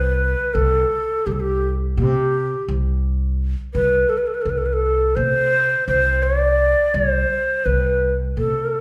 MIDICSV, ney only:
0, 0, Header, 1, 2, 480
1, 0, Start_track
1, 0, Tempo, 710900
1, 370, Time_signature, 9, 3, 24, 8
1, 5948, End_track
2, 0, Start_track
2, 0, Title_t, "Ney"
2, 0, Program_c, 0, 77
2, 0, Note_on_c, 0, 71, 85
2, 365, Note_on_c, 0, 69, 80
2, 375, Note_off_c, 0, 71, 0
2, 852, Note_on_c, 0, 67, 66
2, 862, Note_off_c, 0, 69, 0
2, 891, Note_on_c, 0, 69, 59
2, 901, Note_off_c, 0, 67, 0
2, 946, Note_on_c, 0, 67, 68
2, 956, Note_off_c, 0, 69, 0
2, 1149, Note_off_c, 0, 67, 0
2, 1343, Note_on_c, 0, 67, 76
2, 1849, Note_off_c, 0, 67, 0
2, 2527, Note_on_c, 0, 71, 82
2, 2763, Note_on_c, 0, 69, 61
2, 2773, Note_off_c, 0, 71, 0
2, 2821, Note_on_c, 0, 71, 55
2, 2831, Note_off_c, 0, 69, 0
2, 2882, Note_on_c, 0, 69, 57
2, 2892, Note_off_c, 0, 71, 0
2, 2933, Note_on_c, 0, 71, 62
2, 2943, Note_off_c, 0, 69, 0
2, 2982, Note_on_c, 0, 69, 60
2, 2992, Note_off_c, 0, 71, 0
2, 3036, Note_on_c, 0, 71, 63
2, 3046, Note_off_c, 0, 69, 0
2, 3092, Note_on_c, 0, 69, 59
2, 3102, Note_off_c, 0, 71, 0
2, 3145, Note_on_c, 0, 71, 61
2, 3155, Note_off_c, 0, 69, 0
2, 3194, Note_on_c, 0, 69, 82
2, 3205, Note_off_c, 0, 71, 0
2, 3481, Note_on_c, 0, 72, 102
2, 3491, Note_off_c, 0, 69, 0
2, 3965, Note_off_c, 0, 72, 0
2, 3969, Note_on_c, 0, 72, 95
2, 4205, Note_on_c, 0, 74, 84
2, 4215, Note_off_c, 0, 72, 0
2, 4690, Note_on_c, 0, 72, 85
2, 4700, Note_off_c, 0, 74, 0
2, 5167, Note_on_c, 0, 71, 78
2, 5177, Note_off_c, 0, 72, 0
2, 5468, Note_off_c, 0, 71, 0
2, 5656, Note_on_c, 0, 69, 79
2, 5948, Note_off_c, 0, 69, 0
2, 5948, End_track
0, 0, End_of_file